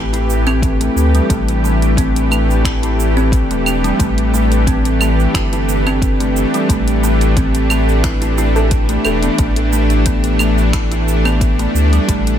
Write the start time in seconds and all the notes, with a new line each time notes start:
Already playing: A1 E3 A3 D4 E4 G4 B4
0.13 E4, closed hi-hat, cabasa
0.30 cabasa
0.47 C4, cabasa, claves
0.62 kick, closed hi-hat, cabasa
0.81 A3, closed hi-hat, cabasa
0.96 D2, cabasa
1.15 G3, closed hi-hat, cabasa
1.30 A1 A3, kick, closed hi-hat, cabasa
1.48 closed hi-hat, cabasa
1.64 A3, cabasa
1.82 closed hi-hat, cabasa
1.97 C4, kick, closed hi-hat, cabasa
2.16 closed hi-hat, cabasa
2.31 A3, cabasa, claves
2.50 cabasa
2.65 E4, finger snap, kick, closed hi-hat, cabasa
2.83 E4, closed hi-hat, cabasa
3.00 cabasa
3.17 C4, cabasa
3.32 kick, closed hi-hat, cabasa
3.50 E1 A3, closed hi-hat, cabasa
3.66 cabasa, claves
3.84 G3, closed hi-hat, cabasa
4.00 A1 A3, kick, closed hi-hat, cabasa
4.18 closed hi-hat
4.34 A3, cabasa
4.52 closed hi-hat, cabasa
4.67 C4, kick, closed hi-hat, cabasa
4.85 closed hi-hat, cabasa
5.01 A3, cabasa, claves
5.20 cabasa
5.34 G1 E4, finger snap, kick, closed hi-hat, cabasa
5.53 E4, closed hi-hat, cabasa
5.69 cabasa
5.87 C4, cabasa, claves
6.02 kick, closed hi-hat, cabasa
6.20 A3, closed hi-hat, cabasa
6.36 cabasa
6.54 G3, closed hi-hat, cabasa
6.69 A1 A3, kick, closed hi-hat, cabasa
6.88 closed hi-hat, cabasa
7.03 A3, cabasa
7.21 closed hi-hat, cabasa
7.37 C4, kick, closed hi-hat, cabasa
7.55 closed hi-hat, cabasa
7.70 A3, cabasa, claves
7.89 cabasa
8.04 E4, finger snap, kick, closed hi-hat, cabasa
8.22 E4, closed hi-hat, cabasa
8.38 E4, cabasa
8.56 A4, cabasa
8.71 kick, closed hi-hat, cabasa
8.89 A3, closed hi-hat, cabasa
9.05 E1 A4, cabasa, claves
9.23 B3, closed hi-hat, cabasa
9.38 A1 A3, kick, closed hi-hat, cabasa
9.56 closed hi-hat
9.73 A3, cabasa
9.90 closed hi-hat, cabasa
10.06 B3, kick, closed hi-hat, cabasa
10.24 closed hi-hat, cabasa
10.39 A3, cabasa, claves
10.58 cabasa
10.73 E4, finger snap, kick, closed hi-hat, cabasa
10.92 E4, closed hi-hat, cabasa
11.08 cabasa
11.25 B3, cabasa, claves
11.41 kick, closed hi-hat, cabasa
11.59 A3, closed hi-hat, cabasa
11.74 D2, cabasa
11.93 G3, closed hi-hat, cabasa
12.08 A1 A3, kick, closed hi-hat, cabasa
12.27 closed hi-hat, cabasa